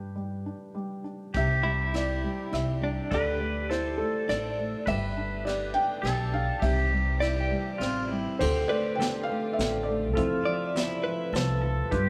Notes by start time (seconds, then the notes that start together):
Already playing: G2 G3 D4 G4 B4
0.15 G3
0.46 D4
0.75 G3
1.04 D4
1.34 C2 C3 G4 E5, kick, ride
1.63 G3 E4
1.93 E4 D5, cross-stick, ride
2.24 G3
2.52 C2 E4 E5, cross-stick, ride
2.80 G3 D4
3.11 D2 D3 G4 A4 B4 D5, kick, ride
3.40 A3
3.70 E4 A4 C5, cross-stick, ride
3.98 A3 A4
4.29 A1 D4 D5, cross-stick, ride
4.58 A3
4.86 G1 D3 G3 A3 B3 G4 B4 E5, kick, ride
5.17 D4
5.45 G4 D5, cross-stick, ride
5.74 D4 G5
6.02 B1 G4 A4, cross-stick, ride
6.33 D4 F5
6.60 C2 C3 E3 G3 C4 G4 E5, kick, ride
6.92 G3
7.20 E4 D5, cross-stick, ride
7.41 G5
7.51 G3
7.78 A1 C4 F4, cross-stick, ride
8.07 G3 E4
8.39 D2 D3 A3 C4 F4 G4 A4 C5, kick, crash
8.68 A3 B4 D5
8.95 D3 G5
9.00 A4, snare, closed hi-hat
9.23 F5
9.29 A3
9.53 E5
9.58 A1 D3, snare, closed hi-hat
9.83 D5
9.88 A3
10.13 F2 F3 C4 F4 A4, kick, closed hi-hat
10.18 C3 F3 E4 E5
10.45 F3 D5
10.75 F3 E4, snare, closed hi-hat
11.04 F3 B4
11.33 C2 F3 A4, snare, closed hi-hat
11.62 F3 A4
11.91 G2 D3 G3 B3 D4 F4 G4 B4, kick, closed hi-hat